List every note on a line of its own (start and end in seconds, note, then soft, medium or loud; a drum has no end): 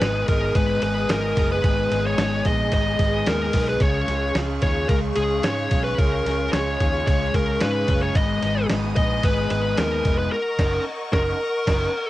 0.00 0.23 G#1 medium
0.00 1.63 G#2 medium
0.00 0.28 G#2 medium
0.00 0.28 D#3 medium
0.00 0.55 G#3 medium
0.00 0.28 G#3 medium
0.00 1.08 B3 medium
0.00 0.28 B3 medium
0.00 0.28 D#4 medium
0.00 8.12 G#4 medium
0.00 0.26 G#4 medium
0.00 0.25 B4 loud
0.00 0.81 B4 medium
0.00 3.78 D#5 medium
0.00 3.78 G#5 medium
0.00 3.78 D#6 medium
0.00 snare loud
0.00 ride medium
0.28 0.51 G#1 medium
0.28 0.54 G#3 soft
0.28 0.55 B3 soft
0.28 0.56 D#4 soft
0.28 0.55 G#4 soft
0.28 0.56 A#4 medium
0.28 kick loud
0.28 ride medium
0.55 0.78 G#1 loud
0.55 0.82 G#3 medium
0.55 0.83 B3 medium
0.55 0.82 D#4 medium
0.55 0.81 G#4 medium
0.55 0.82 B4 loud
0.55 kick loud
0.55 ride medium
0.82 1.05 G#1 loud
0.82 1.10 G#3 medium
0.82 1.10 B3 medium
0.82 1.10 D#4 medium
0.82 1.10 G#4 medium
0.82 1.36 B4 medium
0.82 1.10 B4 medium
0.82 ride medium
1.09 1.32 G#1 medium
1.09 1.37 G#2 medium
1.09 1.37 D#3 medium
1.09 1.37 G#3 medium
1.09 1.37 B3 medium
1.09 1.37 D#4 medium
1.09 1.36 G#4 loud
1.09 1.48 A#4 medium
1.09 snare loud
1.09 ride medium
1.37 1.59 F#1 loud
1.37 1.64 G#3 soft
1.37 1.64 B3 medium
1.37 1.64 D#4 soft
1.37 1.64 G#4 medium
1.37 2.17 B4 medium
1.37 kick loud
1.37 ride medium
1.52 2.06 B4 medium
1.64 1.86 G#1 loud
1.64 1.91 G#2 medium
1.64 1.91 D#3 medium
1.64 1.92 G#3 medium
1.64 1.91 B3 medium
1.64 1.90 D#4 medium
1.64 1.89 G#4 medium
1.64 kick loud
1.64 ride medium
1.90 2.14 G#1 loud
1.90 2.17 G#3 medium
1.90 2.17 B3 medium
1.90 2.17 D#4 medium
1.90 2.17 G#4 medium
1.90 snare soft
1.90 ride medium
2.06 2.48 C#5 loud
2.17 2.40 G#1 loud
2.17 2.45 G#2 medium
2.17 2.45 D#3 medium
2.17 2.45 G#3 medium
2.17 2.45 B3 medium
2.17 2.44 D#4 medium
2.17 2.43 G#4 medium
2.17 2.98 B4 medium
2.17 snare loud
2.17 ride medium
2.44 2.68 A#1 loud
2.44 2.70 G#3 soft
2.44 2.71 B3 medium
2.44 2.72 D#4 soft
2.44 2.72 G#4 medium
2.44 2.71 D#5 loud
2.44 kick medium
2.44 ride medium
2.72 2.95 G#1 loud
2.72 2.99 G#3 medium
2.72 2.99 B3 medium
2.72 2.99 D#4 medium
2.72 2.98 G#4 medium
2.72 3.29 D#5 loud
2.72 kick medium
2.72 ride medium
2.99 3.22 G#1 loud
2.99 3.26 G#3 soft
2.99 3.27 B3 soft
2.99 3.27 D#4 soft
2.99 3.27 G#4 medium
2.99 3.52 B4 medium
2.99 kick medium
2.99 ride medium
3.26 3.49 D#2 medium
3.26 3.54 G#2 medium
3.26 3.54 D#3 medium
3.26 3.54 G#3 medium
3.26 3.55 B3 medium
3.26 3.54 D#4 medium
3.26 3.53 G#4 medium
3.26 3.69 A#4 medium
3.26 snare loud
3.26 ride medium
3.53 3.76 B1 loud
3.53 3.81 G#3 soft
3.53 3.82 B3 soft
3.53 3.82 D#4 medium
3.53 3.81 G#4 medium
3.53 3.86 B4 medium
3.53 kick medium
3.53 open hi-hat medium
3.53 ride medium
3.69 3.81 B4 medium
3.80 4.03 C#2 loud
3.80 4.08 C#3 medium
3.80 4.09 G#3 medium
3.80 4.09 C#4 medium
3.80 4.08 F4 medium
3.80 4.07 G#4 medium
3.80 8.11 C#5 medium
3.80 4.36 C#5 medium
3.80 8.11 F5 medium
3.80 8.11 C#6 medium
3.80 kick loud
3.80 ride medium
4.08 4.30 C#2 loud
4.08 4.35 C#4 medium
4.08 4.36 F4 medium
4.08 4.35 G#4 medium
4.08 snare soft
4.08 ride medium
4.35 4.58 C#2 loud
4.35 4.62 C#3 medium
4.35 4.63 G#3 medium
4.35 4.63 C#4 medium
4.35 4.63 F4 medium
4.35 4.62 G#4 medium
4.35 snare loud
4.35 ride medium
4.62 4.85 D#2 loud
4.62 4.89 C#4 soft
4.62 4.90 F4 soft
4.62 4.90 G#4 soft
4.62 4.89 C#5 medium
4.62 kick loud
4.62 ride medium
4.89 5.12 C#2 loud
4.89 5.16 G#3 medium
4.89 5.17 C#4 medium
4.89 5.17 F4 medium
4.89 5.15 G#4 medium
4.89 4.97 A#4 loud
4.89 kick loud
4.89 ride medium
5.15 5.39 C#2 loud
5.15 5.44 C#4 soft
5.15 5.44 F4 medium
5.15 5.42 G#4 medium
5.15 5.44 G#4 medium
5.15 ride medium
5.43 5.66 G#2 medium
5.43 5.71 C#3 medium
5.43 5.71 G#3 medium
5.43 5.72 C#4 medium
5.43 5.71 F4 medium
5.43 5.70 G#4 medium
5.43 5.82 C#5 loud
5.43 snare loud
5.43 ride medium
5.71 5.94 B1 medium
5.71 5.99 C#4 soft
5.71 5.99 F4 medium
5.71 5.98 G#4 medium
5.71 kick medium
5.71 ride medium
5.84 5.99 B4 medium
5.98 6.21 C#2 loud
5.98 6.26 C#3 medium
5.98 6.26 G#3 medium
5.98 6.26 C#4 medium
5.98 6.26 F4 medium
5.98 6.25 G#4 medium
5.98 6.53 A#4 medium
5.98 kick loud
5.98 ride medium
6.25 6.48 C#2 loud
6.25 6.52 C#4 medium
6.25 6.53 F4 medium
6.25 6.53 G#4 medium
6.25 snare soft
6.25 ride medium
6.53 6.75 C#2 loud
6.53 6.80 C#3 medium
6.53 6.80 G#3 medium
6.53 6.80 C#4 medium
6.53 6.80 F4 medium
6.53 6.79 G#4 medium
6.53 7.06 C#5 loud
6.53 snare loud
6.53 ride medium
6.80 7.02 D#2 medium
6.80 7.07 C#4 soft
6.80 7.08 F4 soft
6.80 7.07 G#4 medium
6.80 kick loud
6.80 ride medium
7.07 7.29 C#2 loud
7.07 7.34 G#3 medium
7.07 7.35 C#4 medium
7.07 7.35 F4 medium
7.07 7.34 G#4 medium
7.07 7.35 C#5 loud
7.07 kick loud
7.07 ride medium
7.34 7.56 C#2 loud
7.34 7.63 C#4 medium
7.34 7.62 F4 soft
7.34 7.62 G#4 medium
7.34 7.61 A#4 loud
7.34 kick medium
7.34 ride medium
7.61 7.84 G#2 medium
7.61 7.89 C#3 medium
7.61 7.89 G#3 medium
7.61 7.90 C#4 medium
7.61 7.90 F4 medium
7.61 7.89 G#4 loud
7.61 8.02 B4 medium
7.61 snare loud
7.61 ride medium
7.88 8.11 F#1 loud
7.88 8.17 C#4 soft
7.88 8.17 F4 soft
7.88 8.16 G#4 medium
7.88 kick loud
7.88 ride medium
8.03 8.16 C#5 loud
8.14 8.38 G#1 loud
8.14 8.43 G#2 medium
8.14 8.43 D#3 medium
8.14 8.43 G#3 medium
8.14 10.30 B3 medium
8.14 8.43 B3 medium
8.14 8.43 D#4 medium
8.14 8.42 B4 medium
8.14 10.30 D#5 medium
8.14 8.66 D#5 medium
8.14 10.29 G#5 medium
8.14 10.30 D#6 loud
8.14 kick loud
8.14 ride medium
8.43 8.65 G#1 loud
8.43 8.70 G#3 medium
8.43 8.71 B3 medium
8.43 8.71 D#4 medium
8.43 8.70 B4 medium
8.43 snare soft
8.43 ride medium
8.70 8.92 G#1 loud
8.70 8.97 G#2 medium
8.70 8.98 D#3 medium
8.70 8.98 G#3 medium
8.70 8.98 B3 medium
8.70 8.97 D#4 medium
8.70 8.96 B4 medium
8.70 snare loud
8.70 ride medium
8.96 9.19 A#1 loud
8.96 9.23 G#3 soft
8.96 9.24 B3 soft
8.96 9.25 D#4 medium
8.96 9.24 B4 medium
8.96 9.25 D#5 loud
8.96 kick loud
8.96 ride medium
9.23 9.46 G#1 loud
9.23 9.51 G#3 medium
9.23 9.52 B3 medium
9.23 9.51 D#4 medium
9.23 9.50 B4 loud
9.23 9.50 B4 medium
9.23 kick loud
9.23 ride medium
9.50 9.73 G#1 loud
9.50 9.78 G#3 soft
9.50 9.78 B3 soft
9.50 9.79 D#4 medium
9.50 9.78 B4 medium
9.50 ride medium
9.78 10.00 D#2 medium
9.78 10.05 G#2 medium
9.78 10.06 D#3 medium
9.78 10.06 G#3 medium
9.78 10.06 B3 medium
9.78 10.06 D#4 medium
9.78 10.18 A#4 medium
9.78 10.05 B4 medium
9.78 snare loud
9.78 ride medium
10.05 10.27 F1 medium
10.05 10.34 G#3 soft
10.05 10.34 B3 soft
10.05 10.33 D#4 soft
10.05 10.33 B4 medium
10.05 kick loud
10.05 ride medium
10.18 10.32 B4 medium
10.31 12.10 A#4 medium
10.31 10.83 A#4 medium
10.31 12.10 D#5 medium
10.31 12.10 F#5 medium
10.31 12.10 C#6 loud
10.59 10.78 F#1 loud
10.59 10.79 C#4 loud
10.59 10.79 D#4 loud
10.59 10.78 A#4 loud
10.59 kick loud
10.59 snare loud
10.59 crash medium
11.13 11.32 F#1 loud
11.13 11.33 C#4 medium
11.13 11.32 D#4 medium
11.13 12.10 A#4 loud
11.13 11.32 A#4 medium
11.13 kick loud
11.13 snare loud
11.67 11.86 F#1 loud
11.67 11.87 C#4 loud
11.67 11.87 D#4 loud
11.67 11.86 A#4 loud
11.67 kick loud
11.67 snare loud
11.67 crash loud